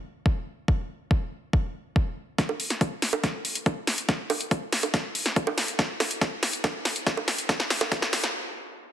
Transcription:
0.26 kick loud
0.68 kick loud
1.11 kick loud
1.53 kick loud
1.96 kick loud
2.38 kick loud
2.38 snare soft
2.38 closed hi-hat medium
2.49 high bongo soft
2.60 open hi-hat loud
2.70 snare soft
2.70 closed hi-hat medium
2.81 kick loud
2.81 closed hi-hat medium
3.02 snare medium
3.02 open hi-hat loud
3.13 closed hi-hat medium
3.13 high bongo medium
3.24 kick loud
3.24 snare medium
3.24 closed hi-hat medium
3.45 open hi-hat loud
3.55 closed hi-hat medium
3.66 kick loud
3.66 closed hi-hat medium
3.66 high bongo soft
3.87 snare medium
3.87 open hi-hat loud
3.98 closed hi-hat medium
4.09 kick loud
4.09 snare medium
4.09 closed hi-hat medium
4.30 open hi-hat loud
4.30 high bongo medium
4.41 closed hi-hat medium
4.51 kick loud
4.51 closed hi-hat medium
4.72 snare medium
4.72 open hi-hat loud
4.83 closed hi-hat medium
4.83 high bongo soft
4.94 kick loud
4.94 snare medium
4.94 closed hi-hat medium
5.15 open hi-hat loud
5.26 snare medium
5.26 closed hi-hat medium
5.36 kick loud
5.36 closed hi-hat medium
5.47 high bongo medium
5.58 snare medium
5.58 open hi-hat loud
5.68 closed hi-hat medium
5.79 kick loud
5.79 snare medium
5.79 closed hi-hat medium
6.00 snare medium
6.00 open hi-hat loud
6.00 high bongo soft
6.11 closed hi-hat medium
6.21 kick loud
6.21 snare medium
6.21 closed hi-hat medium
6.43 snare medium
6.43 open hi-hat loud
6.53 closed hi-hat medium
6.64 kick loud
6.64 snare medium
6.64 closed hi-hat medium
6.64 high bongo medium
6.85 snare medium
6.85 open hi-hat loud
6.96 closed hi-hat medium
7.07 kick loud
7.07 snare medium
7.07 closed hi-hat medium
7.17 high bongo soft
7.28 snare medium
7.28 open hi-hat loud
7.38 closed hi-hat medium
7.49 kick loud
7.49 snare medium
7.49 closed hi-hat medium
7.60 snare medium
7.70 snare loud
7.70 open hi-hat loud
7.81 snare medium
7.81 closed hi-hat medium
7.81 high bongo medium
7.92 kick loud
7.92 snare loud
7.92 closed hi-hat medium
8.02 snare medium
8.13 snare loud
8.13 open hi-hat loud
8.24 snare medium
8.24 closed hi-hat medium

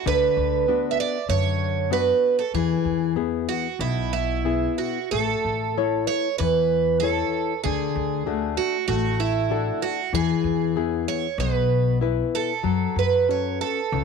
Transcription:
0.06 0.26 D2 medium
0.06 0.65 D3 medium
0.06 0.90 B4 loud
0.37 0.97 D2 medium
0.68 1.17 B3 soft
0.68 1.17 D4 soft
0.68 1.18 F#4 soft
0.91 0.98 E5 medium
1.00 1.29 D5 medium
1.28 2.10 F#2 medium
1.28 1.89 D3 medium
1.28 1.92 C#5 loud
1.91 2.41 B3 soft
1.91 2.41 D4 soft
1.91 2.42 F#4 medium
1.91 2.36 B4 medium
2.39 2.54 A4 medium
2.54 2.74 E2 medium
2.54 3.15 E3 medium
2.54 3.13 G#4 medium
2.85 3.46 E2 medium
3.16 3.67 B3 soft
3.16 3.67 E4 soft
3.16 3.67 G#4 soft
3.49 3.80 F#4 medium
3.79 4.65 B1 medium
3.79 4.43 B2 medium
3.79 4.12 E4 medium
4.13 4.75 E4 medium
4.45 4.98 B3 soft
4.45 4.98 E4 soft
4.45 4.98 G#4 soft
4.78 5.09 F#4 medium
5.11 5.33 A1 medium
5.11 5.74 A3 medium
5.11 6.07 A4 medium
5.45 6.06 A1 medium
5.77 6.27 E4 soft
5.77 6.27 A4 soft
5.77 6.28 C#5 soft
6.07 6.37 C#5 medium
6.38 7.21 E2 medium
6.38 7.01 E3 medium
6.38 6.99 B4 medium
7.00 7.53 E4 soft
7.00 7.63 A4 medium
7.00 7.53 A4 soft
7.00 7.53 C#5 soft
7.64 7.85 D2 medium
7.64 8.25 D3 medium
7.64 8.54 G#4 medium
7.96 8.56 D2 medium
8.26 8.76 A3 medium
8.26 8.76 D4 soft
8.26 8.76 F#4 soft
8.57 8.86 F#4 medium
8.88 9.69 A1 medium
8.88 9.49 A3 medium
8.88 9.20 F#4 medium
9.20 9.84 E4 medium
9.50 10.00 D4 soft
9.50 10.00 F#4 soft
9.50 10.01 A4 soft
9.82 10.14 F#4 medium
10.13 10.33 E2 medium
10.13 10.74 E3 medium
10.13 11.04 G#4 medium
10.44 11.05 E2 medium
10.76 11.26 B3 soft
10.76 11.26 E4 soft
10.76 11.26 G#4 medium
11.08 11.39 C#5 medium
11.38 12.20 B1 medium
11.38 12.00 B2 medium
11.38 11.98 B4 medium
12.01 12.51 B3 soft
12.01 12.52 E4 soft
12.01 12.52 B4 soft
12.35 12.98 A4 medium
12.63 12.85 F#2 medium
12.63 13.26 F#3 medium
12.96 13.58 F#2 medium
12.96 13.30 B4 medium
13.29 13.80 C#4 soft
13.29 13.80 F#4 soft
13.29 13.80 A4 soft
13.29 13.61 C#5 medium
13.61 14.04 A4 medium
13.92 14.04 C#2 medium
13.92 14.04 C#3 medium

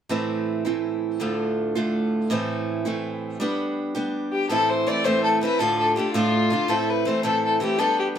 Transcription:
0.09 0.65 A2 medium
0.09 0.65 E3 medium
0.09 0.65 A3 medium
0.09 0.65 C4 medium
0.09 0.64 E4 medium
0.65 1.19 A2 soft
0.65 1.21 E3 medium
0.65 1.21 A3 soft
0.65 1.21 C4 soft
0.65 1.20 E4 medium
1.20 1.75 D2 medium
1.20 1.75 A2 medium
1.20 1.76 D3 medium
1.20 1.75 A3 medium
1.20 1.75 D4 medium
1.20 1.74 F4 medium
1.75 2.32 D2 soft
1.75 2.29 A2 soft
1.75 2.30 D3 medium
1.75 2.30 A3 medium
1.75 2.31 D4 soft
1.75 2.31 F4 medium
2.30 2.85 A2 medium
2.30 2.86 E3 medium
2.30 2.85 A3 medium
2.30 2.85 C4 medium
2.30 2.84 E4 medium
2.85 3.41 A2 soft
2.85 3.39 E3 medium
2.85 3.41 A3 medium
2.85 3.41 C4 medium
2.85 3.40 E4 medium
3.40 3.95 G3 medium
3.40 3.95 B3 medium
3.40 3.94 D4 medium
3.40 3.93 G4 medium
3.95 4.50 G3 soft
3.95 4.50 B3 medium
3.95 4.51 D4 medium
3.95 4.50 G4 medium
4.32 4.49 G4 medium
4.50 4.87 A2 medium
4.50 4.85 E3 medium
4.50 4.89 A3 medium
4.50 4.87 C4 medium
4.50 4.88 E4 medium
4.50 4.71 A4 medium
4.70 4.89 C5 medium
4.87 5.04 E3 soft
4.87 5.05 A3 medium
4.87 5.04 C4 medium
4.87 5.05 E4 medium
4.87 5.06 D5 medium
5.04 5.42 A2 medium
5.04 5.40 E3 medium
5.04 5.43 A3 medium
5.04 5.41 C4 medium
5.04 5.43 E4 medium
5.04 5.23 C5 loud
5.24 5.41 A4 medium
5.41 5.60 E3 medium
5.41 5.59 A3 medium
5.41 5.60 C4 medium
5.41 5.61 E4 medium
5.41 5.61 B4 medium
5.59 5.97 D2 medium
5.59 5.97 A2 medium
5.59 5.95 D3 medium
5.59 5.96 A3 medium
5.59 5.97 D4 medium
5.59 5.98 F4 medium
5.59 5.78 A4 medium
5.79 5.96 A4 medium
5.96 6.14 D3 soft
5.96 6.14 A3 medium
5.96 6.15 D4 medium
5.96 6.15 F4 medium
5.96 6.13 G4 medium
6.14 6.52 D2 medium
6.14 6.52 A2 medium
6.14 6.49 D3 medium
6.14 6.51 A3 medium
6.14 6.52 D4 medium
6.14 6.71 F4 medium
6.14 6.52 F4 medium
6.50 6.68 D3 medium
6.50 6.69 A3 medium
6.50 6.69 D4 medium
6.50 6.70 F4 medium
6.68 7.06 A2 medium
6.68 7.04 E3 medium
6.68 7.07 A3 medium
6.68 7.06 C4 medium
6.68 7.07 E4 medium
6.68 6.91 A4 medium
6.90 7.08 B4 medium
7.05 7.23 E3 medium
7.05 7.24 A3 medium
7.05 7.23 C4 medium
7.05 7.24 E4 medium
7.05 7.23 C5 medium
7.23 7.61 A2 medium
7.23 7.59 E3 medium
7.23 7.61 A3 medium
7.23 7.60 C4 medium
7.23 7.62 E4 medium
7.23 7.42 A4 medium
7.45 7.61 A4 medium
7.60 7.78 E3 medium
7.60 7.80 A3 medium
7.60 7.79 C4 medium
7.60 7.80 E4 medium
7.60 7.80 G4 medium
7.79 8.14 G3 medium
7.79 8.16 B3 medium
7.79 8.17 D4 medium
7.79 8.17 G4 medium
7.79 7.99 A4 medium
8.00 8.07 G4 medium

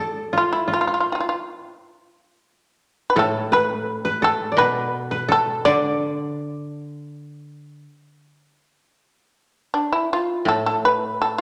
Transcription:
0.00 1.86 A4 medium
0.00 0.82 B4 medium
0.33 0.67 F4 medium
0.38 0.52 F4 medium
0.53 0.68 E4 medium
0.68 2.86 F4 medium
0.74 0.78 F4 medium
0.81 0.85 F4 soft
0.87 0.92 F4 medium
0.94 0.99 F4 soft
1.00 1.06 F4 soft
1.12 1.14 F4 soft
1.12 1.19 F4 soft
1.20 1.27 F4 soft
1.29 1.35 F4 soft
3.10 3.17 B4 medium
3.16 4.58 A2 medium
3.16 3.84 A4 medium
3.16 3.51 A4 medium
3.52 3.84 B4 medium
3.52 4.19 B4 medium
3.84 4.04 A4 medium
4.05 4.58 B4 medium
4.22 5.28 A4 medium
4.22 4.57 A4 medium
4.52 5.65 D5 medium
4.57 5.65 B2 medium
4.57 5.11 B4 medium
4.57 5.26 B4 medium
5.11 6.89 B4 medium
5.28 7.19 A4 medium
5.28 5.64 A4 medium
5.65 7.84 D3 medium
5.65 8.18 D5 medium
9.74 9.90 D4 medium
9.93 10.08 E4 medium
10.13 10.44 F4 medium
10.45 11.41 A2 soft
10.45 10.63 A4 medium
10.66 10.81 A4 medium
10.85 11.16 B4 medium
11.22 11.36 A4 medium

